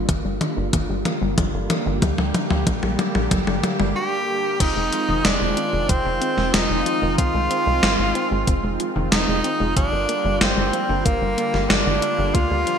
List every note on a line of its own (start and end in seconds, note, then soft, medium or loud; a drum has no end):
0.00 4.56 D3 medium
0.00 4.56 G3 medium
0.00 4.56 A#3 medium
0.00 1.98 F4 medium
0.09 0.23 G1 loud
0.09 0.24 A#3 medium
0.09 kick loud
0.09 closed hi-hat medium
0.09 mid tom medium
0.25 0.39 G1 medium
0.25 0.36 G3 medium
0.41 0.48 D3 medium
0.41 closed hi-hat medium
0.41 mid tom medium
0.57 0.71 G1 medium
0.57 0.68 D3 medium
0.73 0.87 G1 loud
0.73 0.84 A#3 medium
0.73 kick medium
0.73 closed hi-hat loud
0.73 mid tom medium
0.89 1.04 G1 medium
0.89 1.00 G3 medium
1.05 1.21 A#3 medium
1.05 closed hi-hat medium
1.05 mid tom medium
1.22 1.36 G1 medium
1.22 1.33 G3 medium
1.38 1.52 G1 loud
1.38 1.44 D3 medium
1.38 kick loud
1.38 closed hi-hat medium
1.38 mid tom medium
1.54 1.68 G1 medium
1.54 1.65 D3 medium
1.70 1.81 A#3 medium
1.70 closed hi-hat medium
1.70 mid tom medium
1.86 2.00 G1 medium
1.86 1.97 G3 medium
2.02 2.16 D2 loud
2.02 2.18 A#3 medium
2.02 4.58 G4 medium
2.02 kick loud
2.02 closed hi-hat medium
2.02 mid tom medium
2.18 2.33 D2 medium
2.18 2.29 G3 medium
2.18 mid tom medium
2.34 2.41 D3 medium
2.34 closed hi-hat medium
2.34 mid tom loud
2.51 2.65 D2 medium
2.51 2.62 D3 medium
2.51 mid tom medium
2.67 2.81 A#1 loud
2.67 2.78 A#3 medium
2.67 kick loud
2.67 closed hi-hat medium
2.67 mid tom medium
2.83 2.97 A#1 medium
2.83 2.94 G3 medium
2.83 mid tom medium
2.99 3.14 A#3 medium
2.99 closed hi-hat medium
2.99 mid tom loud
3.15 3.29 A#1 medium
3.15 3.26 G3 medium
3.15 mid tom medium
3.31 3.45 G1 loud
3.31 3.38 D3 medium
3.31 kick loud
3.31 closed hi-hat loud
3.31 mid tom loud
3.47 3.62 G1 medium
3.47 3.58 D3 medium
3.47 mid tom medium
3.63 3.75 A#3 medium
3.63 closed hi-hat medium
3.63 mid tom loud
3.80 3.94 G1 medium
3.80 3.91 G3 medium
3.80 mid tom medium
3.96 4.62 G4 loud
4.60 4.74 F1 loud
4.60 9.73 D#3 medium
4.60 9.73 G#3 medium
4.60 9.73 C4 medium
4.60 4.67 C4 medium
4.60 5.27 D#4 loud
4.60 9.73 F4 medium
4.60 kick loud
4.60 closed hi-hat loud
4.60 crash loud
4.76 4.91 F1 medium
4.76 4.87 G#3 medium
4.92 5.04 F3 medium
4.92 closed hi-hat medium
5.09 5.23 F1 medium
5.09 5.24 D#3 loud
5.25 5.39 F1 loud
5.25 5.40 C4 medium
5.25 5.91 D4 loud
5.25 snare loud
5.25 closed hi-hat medium
5.41 5.55 F1 medium
5.41 5.56 G#3 medium
5.57 5.64 C4 medium
5.57 closed hi-hat medium
5.73 5.87 F1 medium
5.73 5.84 G#3 medium
5.89 6.03 F1 loud
5.89 6.00 F3 medium
5.89 6.56 C4 loud
5.89 kick loud
5.89 closed hi-hat loud
6.05 6.20 F1 medium
6.05 6.21 D#3 loud
6.21 6.37 C4 medium
6.21 closed hi-hat medium
6.38 6.52 F1 medium
6.38 6.53 G#3 medium
6.38 snare soft
6.54 6.68 F1 loud
6.54 6.60 C4 medium
6.54 7.18 D#4 loud
6.54 snare loud
6.54 closed hi-hat loud
6.70 6.84 F1 medium
6.70 6.81 G#3 medium
6.86 6.97 F3 medium
6.86 closed hi-hat medium
7.02 7.16 F1 medium
7.02 7.18 D#3 loud
7.18 7.32 C2 loud
7.18 7.34 C4 medium
7.18 8.81 F4 loud
7.18 kick loud
7.18 closed hi-hat loud
7.34 7.49 C2 medium
7.34 7.50 G#3 medium
7.51 7.57 C4 medium
7.51 closed hi-hat medium
7.67 7.81 C2 medium
7.67 7.78 G#3 medium
7.83 7.97 G#1 loud
7.83 7.94 F3 medium
7.83 snare loud
7.83 closed hi-hat loud
7.99 8.13 G#1 medium
7.99 8.14 D#3 loud
8.15 8.31 C4 medium
8.15 closed hi-hat medium
8.31 8.45 G#1 medium
8.31 8.47 G#3 medium
8.47 8.62 F1 loud
8.47 8.54 C4 medium
8.47 kick loud
8.47 closed hi-hat loud
8.64 8.78 F1 medium
8.64 8.75 G#3 medium
8.80 8.91 F3 medium
8.80 closed hi-hat medium
8.96 9.10 F1 medium
8.96 9.11 D#3 loud
9.12 9.26 F1 loud
9.12 9.27 C4 medium
9.12 9.72 D#4 loud
9.12 snare loud
9.12 closed hi-hat loud
9.28 9.42 F1 medium
9.28 9.43 G#3 medium
9.44 9.51 C4 medium
9.44 closed hi-hat medium
9.60 9.74 F1 medium
9.60 9.71 G#3 medium
9.76 9.91 G1 loud
9.76 12.79 D3 medium
9.76 9.87 F3 medium
9.76 12.79 G3 medium
9.76 12.79 A#3 medium
9.76 10.37 D4 loud
9.76 12.79 F4 medium
9.76 kick loud
9.76 closed hi-hat loud
9.92 10.07 G1 medium
9.92 10.08 D3 loud
10.09 10.24 A#3 medium
10.09 closed hi-hat medium
10.25 10.39 G1 medium
10.25 10.40 G3 medium
10.41 10.55 G1 loud
10.41 10.48 A#3 medium
10.41 11.07 C4 loud
10.41 snare loud
10.41 closed hi-hat medium
10.57 10.71 G1 medium
10.57 10.68 G3 medium
10.73 10.84 F3 medium
10.73 closed hi-hat medium
10.89 11.03 G1 medium
10.89 11.05 D3 loud
11.05 11.20 G1 loud
11.05 11.71 A#3 loud
11.05 11.21 A#3 medium
11.05 kick loud
11.05 closed hi-hat loud
11.22 11.36 G1 medium
11.22 11.37 G3 medium
11.38 11.44 A#3 medium
11.38 closed hi-hat medium
11.54 11.68 G1 medium
11.54 11.65 G3 medium
11.54 snare soft
11.70 11.84 G1 loud
11.70 11.81 F3 medium
11.70 12.36 D4 loud
11.70 snare loud
11.70 closed hi-hat medium
11.86 12.00 G1 medium
11.86 12.01 D3 loud
12.02 12.18 A#3 medium
12.02 closed hi-hat medium
12.19 12.33 G1 medium
12.19 12.34 G3 medium
12.35 12.49 D2 loud
12.35 12.41 A#3 medium
12.35 12.79 F4 loud
12.35 kick loud
12.35 closed hi-hat loud
12.51 12.65 D2 medium
12.51 12.62 G3 medium
12.67 12.78 F3 medium
12.67 closed hi-hat medium